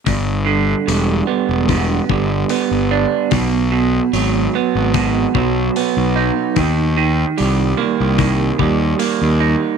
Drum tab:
HH |o-o-o-o-|o-o-o-o-|o-o-o-o-|
BD |o---oo--|o---oo--|o---oo--|